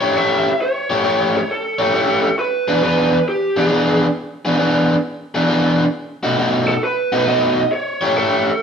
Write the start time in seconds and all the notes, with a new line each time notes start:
Already playing: C#5
0.01 A3 E4 G4 C#5
0.16 A3 E4 G4 C#5 E5
0.62 C#5
0.90 A3 E4 G4 C#5
1.04 A3 E4 G4 C#5
1.36 C#5
1.51 A4
1.79 A3 E4 G4 C#5
1.93 A3 E4 G4 C#5
2.39 B4
2.68 E3 B3 D4 G#4
2.83 E3 B3 D4 G#4 B4
3.28 G4
3.56 E3 B3 D4 G#4
3.71 E3 B3 D4 G#4
4.45 E3 B3 D4 G#4
4.59 E3 B3 D4 G#4
5.34 E3 B3 D4 G#4
5.49 E3 B3 D4 G#4
6.23 B2 A3 D#4 F#4
6.38 B2 A3 D#4 F#4
6.68 A4
6.84 B4
7.12 B2 A3 D#4 F#4
7.27 B2 A3 D#4 F#4 D#5
7.72 C#5
8.01 A3 E4 G4 C#5
8.15 A3 E4 G4 A4 C#5